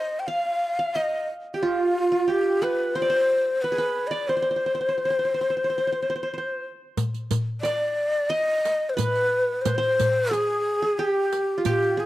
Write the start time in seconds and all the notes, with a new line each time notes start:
Already playing: C5 D#5
0.20 G5
0.27 F5
0.79 F5
0.95 D#5
1.54 G4
1.63 F4
2.12 F4
2.28 G4
2.62 B4
2.95 C5
3.02 D5
3.10 C5
3.62 B4
3.72 G#4
3.78 B4
4.07 D5 D#5
4.13 D5
4.28 C5
4.37 C5
4.42 C5
4.51 C5
4.56 C5
4.66 C5
4.75 C5
4.81 C5
4.89 C5
4.98 C5
5.05 C5
5.10 C5
5.19 C5
5.25 C5
5.34 C5
5.41 C5
5.50 C5
5.57 C5
5.64 C5
5.70 C5
5.78 C5
5.87 C5
5.92 C5
6.02 C5
6.10 C5
6.16 C5
6.23 C5
6.34 C5
6.38 C5
6.97 riq, darbuka dum
7.14 riq
7.31 riq, darbuka dum
7.49 darbuka ka
7.61 D5, riq
7.66 darbuka tek
8.30 D#5, darbuka ka
8.65 riq, darbuka tek
8.89 C5
8.94 B4
8.98 riq, darbuka dum
9.15 riq, darbuka ka
9.62 C5, riq
9.66 B4, darbuka dum
9.75 C5
9.83 riq
9.99 riq, darbuka dum
10.31 G#4, riq, darbuka tek
10.82 G#4
10.98 G4, darbuka ka
11.32 riq, darbuka tek
11.58 F4
11.65 G4, riq, darbuka dum
11.82 riq
11.97 G#4